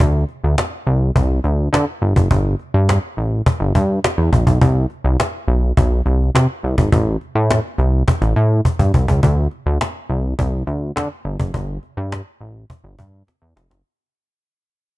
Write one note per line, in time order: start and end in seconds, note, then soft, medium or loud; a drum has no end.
0.00 0.25 D2 loud
0.00 cajon bass loud
0.29 cajon slap soft
0.44 0.56 D2 loud
0.58 cajon slap loud
0.58 cajon slap medium
0.87 1.11 C2 loud
1.16 1.40 C2 loud
1.16 cajon bass loud
1.44 1.69 D2 medium
1.44 cajon slap soft
1.73 1.85 D3 loud
1.73 cajon slap loud
2.02 2.14 G1 loud
2.16 2.28 F#1 medium
2.16 cajon bass loud
2.31 2.55 G1 loud
2.31 cajon bass loud
2.59 cajon slap soft
2.74 2.99 G2 loud
2.89 cajon slap loud
2.89 cajon slap medium
3.17 3.42 A1 loud
3.46 cajon bass loud
3.60 3.73 G1 loud
3.75 3.99 G2 medium
3.75 cajon bass medium
4.04 cajon slap loud
4.04 cajon slap medium
4.18 4.30 E2 medium
4.32 4.45 A#1 medium
4.32 cajon bass loud
4.47 4.59 B1 medium
4.47 cajon bass loud
4.61 4.86 C2 loud
4.61 cajon bass loud
4.90 cajon slap soft
5.05 5.17 C2 loud
5.20 cajon slap loud
5.20 cajon slap medium
5.48 5.72 B1 medium
5.77 6.02 B1 loud
5.77 cajon bass loud
6.06 6.30 C2 medium
6.06 cajon slap soft
6.35 6.47 C3 medium
6.35 cajon slap loud
6.63 6.76 C2 medium
6.78 6.90 G#1 medium
6.78 cajon bass loud
6.92 7.17 A1 loud
6.92 cajon bass loud
7.21 cajon slap soft
7.35 7.60 A2 loud
7.51 cajon slap loud
7.51 cajon slap medium
7.78 8.03 C2 loud
7.78 cajon slap soft
8.08 cajon bass loud
8.08 cajon slap medium
8.22 8.34 A1 loud
8.22 cajon slap medium
8.36 8.61 A2 loud
8.36 cajon slap soft
8.65 cajon bass medium
8.79 8.92 G2 medium
8.79 cajon bass medium
8.94 9.06 C2 medium
8.94 cajon bass loud
9.08 9.21 C#2 medium
9.08 cajon bass loud
9.23 9.48 D2 loud
9.23 cajon bass loud
9.51 cajon slap soft
9.66 9.78 D2 loud
9.81 cajon slap loud
9.81 cajon slap medium
10.10 10.34 C2 medium
10.39 10.63 C2 loud
10.39 cajon bass loud
10.67 10.92 D2 medium
10.67 cajon slap soft
10.96 11.08 D3 loud
10.96 cajon slap loud
10.96 cajon slap medium
11.25 11.37 G1 loud
11.40 11.52 F#1 medium
11.40 cajon bass loud
11.54 11.78 G1 loud
11.54 cajon bass loud
11.83 cajon slap soft
11.97 12.22 G2 loud
12.12 cajon slap loud
12.12 cajon slap medium
12.41 12.65 A1 medium
12.70 cajon bass loud
12.84 12.96 G1 medium
12.99 13.23 G2 medium
12.99 cajon bass medium
13.27 cajon slap soft
13.27 cajon slap medium
13.42 13.54 E2 medium
13.56 13.68 F1 medium
13.56 cajon slap medium
13.70 13.83 F#1 medium
13.70 cajon slap medium